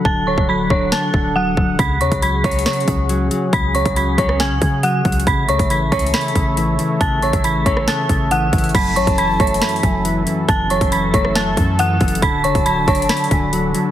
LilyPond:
<<
  \new Staff \with { instrumentName = "Synth bell" } { \time 4/4 \key fis \minor \tempo 4 = 138 <a'' a'''>8 <cis'' cis'''>8 <b'' b'''>8 <cis'' cis'''>8 <a'' a'''>4 <fis'' fis'''>4 | <b'' b'''>8 <cis'' cis'''>8 <b'' b'''>8 <cis'' cis'''>8 <cis'' cis'''>2 | <b'' b'''>8 <cis'' cis'''>8 <b'' b'''>8 <cis'' cis'''>8 <gis'' gis'''>4 <fis'' fis'''>4 | <b'' b'''>8 <cis'' cis'''>8 <b'' b'''>8 <cis'' cis'''>8 <b'' b'''>2 |
<a'' a'''>8 <cis'' cis'''>8 <b'' b'''>8 <cis'' cis'''>8 <a'' a'''>4 <fis'' fis'''>4 | <b'' b'''>8 <cis'' cis'''>8 <b'' b'''>8 <cis'' cis'''>8 <b'' b'''>2 | <a'' a'''>8 <cis'' cis'''>8 <b'' b'''>8 <cis'' cis'''>8 <a'' a'''>4 <fis'' fis'''>4 | <b'' b'''>8 <cis'' cis'''>8 <b'' b'''>8 <cis'' cis'''>8 <b'' b'''>2 | }
  \new Staff \with { instrumentName = "Flute" } { \time 4/4 \key fis \minor r1 | r1 | r1 | r1 |
r1 | a''2~ a''8 gis''8 r4 | r1 | a''2~ a''8 gis''8 r4 | }
  \new Staff \with { instrumentName = "Analog synth pad" } { \time 4/4 \key fis \minor << { fis''1~ | fis''1~ | fis''1 | e''1~ |
e''1 | a'1~ | a'1~ | a'1 | } \\ { <d d' a'>1 | <cis cis' gis'>1~ | <cis cis' gis'>1 | <a a' cis''>1~ |
<a a' cis''>1 | <fis cis' e'>1~ | <fis cis' e'>1 | <d d' fis'>1 | } >> }
  \new Staff \with { instrumentName = "Clean electric guitar" } { \clef bass \time 4/4 \key fis \minor <d fis>8 d8 fis8 d'8 d8 d8 fis8 fis8 | cis8 cis8 fis8 cis'8 cis8 cis8 fis8 fis8 | cis8 cis8 fis8 cis'8 cis8 cis8 fis8 fis8 | cis8 cis8 e8 cis'8 cis8 cis8 e8 e8 |
cis8 cis8 e8 cis'8 cis8 cis8 e8 e8 | fis,8 fis,8 e8 a8 fis,8 fis,8 e8 e8 | fis,8 fis,8 e8 a8 fis,8 fis,8 e8 e8 | d8 d8 fis8 d'8 d8 d8 fis8 fis8 | }
  \new Staff \with { instrumentName = "808-style bass" } { \clef bass \time 4/4 \key fis \minor d,,8. d,,8. d,,8 r8 d,,4 d,,8 | cis,8 e,16 cis,8. cis,8 r8 cis,4 r8 | cis,8. cis,8. cis,8 b,,16 cis,16 cis4 cis,8 | a,,8 cis,16 a,,8. cis,8 r8 a,,4 r8 |
a,,8. a,,8. a,,8 r8 a,,4 a,,8 | fis,,8 a,,16 fis,,8. fis,,8 r8 fis,,4 r8 | fis,,8. fis,,8. fis,,8 e,,16 fis,,16 fis,4 fis,,8 | d,,8 fis,,16 d,,8. fis,,8 r8 d,,4 r8 | }
  \new DrumStaff \with { instrumentName = "Drums" } \drummode { \time 4/4 bd8. bd16 r8 bd8 sn8 bd8 r8 bd8 | <hh bd>8 hh16 <hh bd>16 \tuplet 3/2 { hh16 r16 r16 <hh bd>16 hh16 hh16 <hh sn>16 hh16 hh16 <hh bd>16 r16 r16 } hh8 hh8 | <hh bd>8 hh16 <hh bd>16 hh8 <hh bd>16 ss16 <hh sn>8 <hh bd>8 \tuplet 3/2 { hh16 r16 r16 <hh hho bd>16 hh16 hh16 } | <hh bd>8 hh16 <hh bd>16 \tuplet 3/2 { hh16 r16 r16 <hh bd>16 hh16 hh16 <hh sn>16 hh16 hh16 <hh bd>16 r16 r16 } hh8 hh8 |
<hh bd>8 hh16 <hh bd>16 hh8 <hh bd>16 ss16 <hh sn>8 <hh bd>8 hh8 <hh bd>32 hh32 hh32 hh32 | <cymc hh bd>8 hh16 <hh bd>16 \tuplet 3/2 { hh16 r16 r16 <hh bd>16 hh16 hh16 <hh sn>16 hh16 hh16 <hh bd>16 r16 r16 } hh8 hh8 | <hh bd>8 hh16 <hh bd>16 hh8 <hh bd>16 ss16 <hh sn>8 <hh bd>8 \tuplet 3/2 { hh16 r16 r16 <hh hho bd>16 hh16 hh16 } | <hh bd>8 hh16 <hh bd>16 \tuplet 3/2 { hh16 r16 r16 <hh bd>16 hh16 hh16 <hh sn>16 hh16 hh16 <hh bd>16 r16 r16 } hh8 hh8 | }
>>